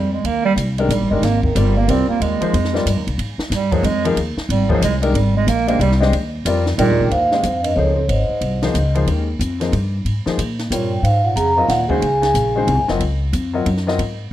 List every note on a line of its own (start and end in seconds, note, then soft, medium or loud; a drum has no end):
0.00 0.23 F2 loud
0.00 0.13 G3 medium
0.14 0.27 G#3 medium
0.24 0.55 D#2 medium
0.24 0.45 A#3 loud
0.24 ride medium
0.45 0.53 G3 loud
0.56 0.88 C2 medium
0.56 hi-hat pedal medium
0.56 ride medium
0.78 0.89 D#3 medium
0.78 0.90 G#3 medium
0.78 0.90 D4 medium
0.78 0.90 G4 medium
0.78 0.90 A#4 medium
0.78 ride soft
0.89 1.00 A#1 loud
0.89 1.12 G3 medium
0.89 hi-hat pedal medium
0.89 ride medium
1.00 1.10 G#1 medium
1.11 1.21 G1 medium
1.11 1.22 D#3 medium
1.11 1.25 G#3 medium
1.11 1.22 G#3 medium
1.11 1.22 D4 medium
1.11 1.22 G4 medium
1.11 1.23 A#4 medium
1.22 1.54 G#1 medium
1.22 1.43 A#3 loud
1.22 snare soft
1.22 ride medium
1.43 1.58 D#3 medium
1.43 kick medium
1.55 1.87 G1 loud
1.55 1.74 G3 medium
1.55 1.79 G3 loud
1.55 1.74 C4 medium
1.55 1.75 F4 medium
1.55 1.74 A#4 medium
1.55 1.75 D5 medium
1.55 hi-hat pedal medium
1.55 ride medium
1.77 1.91 A#3 medium
1.88 2.07 C2 loud
1.88 2.38 G3 medium
1.88 2.38 C4 medium
1.88 2.09 C4 loud
1.88 2.38 F4 medium
1.88 2.38 A#4 medium
1.88 2.38 D5 medium
1.88 ride medium
2.08 2.23 A#3 loud
2.08 muted upright bass stroke soft
2.20 2.40 D#2 medium
2.20 3.19 G#3 loud
2.20 ride medium
2.41 2.52 F3 medium
2.41 2.52 A#3 medium
2.41 2.53 D#4 medium
2.41 2.53 G#4 medium
2.41 2.53 C5 medium
2.41 muted upright bass stroke soft
2.41 ride soft
2.53 2.85 F2 medium
2.53 ride medium
2.65 snare soft
2.73 2.85 G3 medium
2.73 2.85 C4 medium
2.73 2.85 F4 medium
2.73 2.85 A#4 medium
2.73 2.85 D5 medium
2.73 snare soft
2.86 2.97 G2 loud
2.86 hi-hat pedal medium
2.86 ride medium
2.97 3.06 D#2 medium
3.07 3.17 C2 medium
3.07 ride medium
3.18 3.37 G#2 medium
3.18 ride medium
3.38 muted upright bass stroke soft
3.38 snare medium
3.50 3.83 G2 medium
3.50 3.74 G3 medium
3.50 snare soft
3.50 hi-hat pedal medium
3.50 ride medium
3.72 3.83 F3 medium
3.72 3.87 F#3 loud
3.72 3.83 A#3 medium
3.72 3.83 D#4 medium
3.72 3.83 G#4 medium
3.72 3.84 C5 medium
3.72 kick medium
3.72 ride medium
3.83 4.15 F2 loud
3.83 4.06 G#3 loud
3.83 ride medium
4.05 4.16 F3 medium
4.05 4.16 A#3 medium
4.05 4.16 D#4 medium
4.05 4.16 G#4 medium
4.05 4.16 A#4 medium
4.05 ride medium
4.16 4.36 D#2 medium
4.16 ride medium
4.37 muted upright bass stroke soft
4.37 snare soft
4.49 4.81 G#1 loud
4.49 4.69 G3 medium
4.49 ride medium
4.69 4.81 F3 medium
4.69 4.82 F#3 medium
4.69 4.81 A#3 medium
4.69 4.81 D#4 medium
4.69 4.81 G#4 medium
4.69 4.82 C5 medium
4.69 kick medium
4.82 5.13 C2 medium
4.82 4.96 G#3 medium
4.82 hi-hat pedal medium
4.82 ride medium
5.02 5.13 D#3 medium
5.02 5.13 G#3 medium
5.02 5.14 D4 medium
5.02 5.14 G4 medium
5.02 5.14 A#4 loud
5.02 ride medium
5.14 5.46 G#1 loud
5.14 5.35 G3 medium
5.14 ride medium
5.36 5.50 G#3 loud
5.47 5.79 A#1 loud
5.47 5.68 A#3 loud
5.47 hi-hat pedal medium
5.47 ride medium
5.67 5.79 G#3 medium
5.67 5.79 A#3 loud
5.67 5.79 D4 medium
5.67 5.79 G4 medium
5.67 5.79 C5 medium
5.67 5.79 D#5 medium
5.67 ride medium
5.79 6.11 C2 loud
5.79 5.94 G3 loud
5.79 ride medium
5.92 snare soft
6.01 6.12 G#3 medium
6.01 6.12 D4 medium
6.01 6.12 G4 medium
6.01 6.12 C5 medium
6.01 6.12 D#5 loud
6.01 snare medium
6.12 6.44 D#2 medium
6.12 ride medium
6.45 6.77 F2 loud
6.45 6.64 G3 medium
6.45 6.64 C4 medium
6.45 6.64 F4 medium
6.45 6.65 A#4 medium
6.45 6.65 D5 medium
6.45 hi-hat pedal medium
6.45 ride medium
6.66 snare medium
6.78 6.89 G2 loud
6.78 7.09 A#2 loud
6.78 7.11 D#3 medium
6.78 7.11 G#3 medium
6.78 7.11 D4 medium
6.78 7.12 G4 medium
6.78 7.12 A#4 medium
6.78 7.09 G5 loud
6.78 ride medium
6.89 7.00 D#2 medium
7.00 7.10 C2 medium
7.11 7.43 D#2 medium
7.11 7.60 G#2 medium
7.11 7.61 F5 medium
7.11 ride medium
7.32 7.43 G#3 medium
7.32 7.43 C#4 medium
7.32 7.43 G4 medium
7.32 7.43 C5 medium
7.32 7.43 D#5 medium
7.32 snare soft
7.43 7.75 F2 medium
7.43 hi-hat pedal medium
7.43 ride medium
7.63 7.75 G2 medium
7.63 7.75 D#5 medium
7.63 ride medium
7.75 8.08 C#2 medium
7.75 7.95 F2 medium
7.75 7.95 F3 medium
7.75 7.95 A#3 medium
7.75 7.96 D#4 medium
7.75 7.96 G#4 medium
7.75 7.96 C5 medium
7.75 7.95 C#5 medium
7.96 8.07 F2 medium
7.96 8.09 C#5 medium
8.08 8.28 G#1 medium
8.08 8.91 G#2 medium
8.08 8.91 D#5 medium
8.08 ride medium
8.29 muted upright bass stroke soft
8.41 8.73 C2 medium
8.41 ride medium
8.62 8.74 F3 medium
8.62 8.74 A#3 medium
8.62 8.74 D#4 medium
8.62 8.74 G#4 medium
8.62 8.74 C5 medium
8.62 snare medium
8.62 ride soft
8.74 9.06 C#2 medium
8.74 hi-hat pedal medium
8.74 ride medium
8.95 9.06 F3 medium
8.95 9.06 A#3 medium
8.95 9.06 D#4 medium
8.95 9.07 G#4 medium
8.95 9.07 C5 medium
8.95 ride soft
9.07 9.39 D#2 medium
9.07 9.26 D#3 medium
9.07 9.26 G#3 soft
9.07 9.26 C#4 soft
9.07 9.26 G4 soft
9.07 9.27 A#4 medium
9.07 ride medium
9.39 9.72 F2 medium
9.39 hi-hat pedal medium
9.39 ride medium
9.60 9.72 F3 medium
9.60 9.72 A#3 medium
9.60 9.72 D#4 medium
9.60 9.72 G#4 medium
9.60 9.72 C5 medium
9.60 snare soft
9.60 ride soft
9.72 10.04 G2 loud
9.72 ride medium
10.05 10.25 G#2 medium
10.05 ride medium
10.26 10.37 F3 medium
10.26 10.38 A#3 medium
10.26 10.38 D#4 medium
10.26 10.38 G#4 medium
10.26 10.38 C5 medium
10.26 muted upright bass stroke soft
10.26 snare medium
10.38 10.70 A#2 medium
10.38 hi-hat pedal soft
10.38 ride medium
10.59 snare soft
10.59 ride soft
10.70 11.02 G2 medium
10.70 11.02 A#2 medium
10.70 10.90 G3 medium
10.70 10.90 C4 medium
10.70 10.90 F4 medium
10.70 10.90 A#4 medium
10.70 10.90 C#5 medium
10.70 11.05 G5 medium
10.70 hi-hat pedal medium
10.70 ride medium
11.03 11.35 G#2 medium
11.03 11.23 G#2 medium
11.03 11.25 F5 medium
11.03 ride medium
11.24 11.36 A#2 medium
11.24 11.36 F#5 medium
11.36 11.68 F2 medium
11.36 11.55 C#3 medium
11.36 11.58 A#5 medium
11.36 hi-hat pedal medium
11.36 ride medium
11.55 11.67 G#2 medium
11.55 11.68 F#3 medium
11.55 11.68 C4 medium
11.55 11.69 F4 medium
11.55 11.69 A#4 medium
11.55 11.69 D#5 medium
11.55 11.70 F5 medium
11.67 12.01 D#2 medium
11.67 11.87 A#2 medium
11.67 11.90 F#5 medium
11.67 snare soft
11.67 ride medium
11.88 12.20 C#3 medium
11.88 12.01 D#3 medium
11.88 12.01 G#3 medium
11.88 12.01 C#4 medium
11.88 12.01 F#4 medium
11.88 12.02 C5 medium
11.88 12.21 G#5 medium
11.88 kick medium
12.01 12.34 C#2 medium
12.01 ride medium
12.20 12.83 C#3 medium
12.20 12.85 G#5 medium
12.20 snare medium
12.20 ride soft
12.34 12.67 A#1 medium
12.34 hi-hat pedal medium
12.34 ride medium
12.56 12.67 D#3 medium
12.56 12.67 G#3 medium
12.56 12.67 C#4 medium
12.56 12.67 F#4 medium
12.56 12.68 C5 medium
12.67 12.78 C2 medium
12.67 ride medium
12.78 12.89 G#1 medium
12.88 12.99 F#1 medium
12.88 12.99 F#3 medium
12.88 13.00 C4 medium
12.88 13.00 F4 medium
12.88 13.00 A#4 medium
12.88 13.00 D#5 medium
12.88 snare soft
13.00 13.32 C#2 medium
13.00 ride medium
13.33 13.65 F2 loud
13.33 hi-hat pedal soft
13.33 ride medium
13.53 13.65 F#3 medium
13.53 13.65 C4 medium
13.53 13.65 F4 medium
13.53 13.65 A#4 medium
13.53 13.66 D#5 medium
13.66 13.98 F#2 medium
13.66 ride medium
13.77 snare soft
13.87 13.98 F#3 medium
13.87 13.98 C4 medium
13.87 13.98 F4 medium
13.87 13.98 A#4 medium
13.87 13.99 D#5 medium
13.87 snare soft
13.98 14.30 G#2 medium
13.98 ride medium